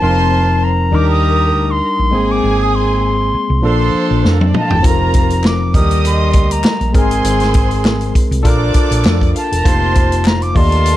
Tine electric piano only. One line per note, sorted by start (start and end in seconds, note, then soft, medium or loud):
0.02 0.92 F3 medium
0.02 0.93 C4 medium
0.02 0.92 D#4 medium
0.02 0.93 A#4 medium
0.91 2.10 G3 medium
0.91 2.11 D4 medium
0.91 2.11 D#4 medium
0.91 2.12 A#4 medium
2.11 3.60 G#3 medium
2.11 3.60 A#3 medium
2.11 3.61 C4 medium
2.11 3.61 G#4 medium
3.62 4.81 F3 medium
3.62 4.81 A#3 medium
3.62 4.82 D4 medium
3.62 4.82 A4 medium
4.82 5.72 F3 medium
4.82 5.74 C4 medium
4.82 5.74 D#4 medium
4.82 4.91 A4 medium
4.90 5.75 A#4 medium
5.73 5.81 F3 soft
5.73 6.92 A#3 medium
5.73 6.93 A#4 medium
5.73 6.93 D#5 medium
5.79 6.95 G3 medium
6.92 8.41 G#3 medium
6.92 8.42 C4 medium
6.92 8.42 G#4 medium
6.92 8.42 A#4 medium
8.43 9.62 D4 medium
8.43 9.63 F4 medium
8.43 9.62 A4 medium
8.43 9.63 A#4 medium
9.64 10.53 A#3 medium
9.64 10.55 D#4 medium
9.64 10.56 F4 medium
9.64 10.56 C5 medium
10.55 10.97 A#3 medium
10.55 10.97 G4 medium
10.55 10.97 D5 medium
10.55 10.97 D#5 medium